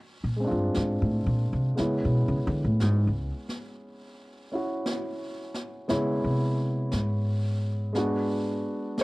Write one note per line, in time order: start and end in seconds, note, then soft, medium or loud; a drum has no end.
0.24 0.49 A#2 medium
0.37 1.74 G#3 soft
0.37 1.77 C4 soft
0.44 1.79 D4 soft
0.44 1.80 F4 soft
0.51 0.71 G2 medium
0.74 1.01 G#2 medium
0.74 brush sweep soft
0.74 snare soft
1.02 1.26 A2 medium
1.26 1.51 A#2 medium
1.53 1.73 C3 medium
1.75 2.04 C#3 medium
1.75 5.86 G#3 soft
1.75 5.87 B3 soft
1.75 4.50 C#4 soft
1.75 brush sweep soft
1.75 snare soft
1.80 4.52 E4 soft
2.05 2.28 B2 medium
2.28 2.36 C#3 medium
2.47 2.64 D3 medium
2.64 2.82 A2 medium
2.80 3.06 G#2 medium
2.80 brush sweep soft
2.80 snare soft
3.07 3.30 C#2 medium
3.49 snare soft
3.83 brush sweep soft
4.52 5.88 C#4 soft
4.52 5.88 E4 soft
4.52 5.90 F#4 soft
4.86 brush sweep soft
4.86 snare soft
5.54 snare soft
5.88 6.23 C#3 medium
5.88 7.91 G#3 soft
5.88 7.93 B3 soft
5.88 7.95 E4 soft
5.88 7.95 C#5 soft
5.88 brush sweep soft
5.88 snare soft
6.24 6.88 C3 medium
6.92 8.61 G#2 medium
6.92 brush sweep soft
6.92 snare soft
7.93 9.04 G#3 soft
7.93 9.04 B3 soft
7.93 9.04 D4 soft
7.93 brush sweep soft
7.93 snare soft
7.97 9.04 F#4 soft
8.98 9.04 G#4 soft
8.98 brush sweep soft
8.98 snare soft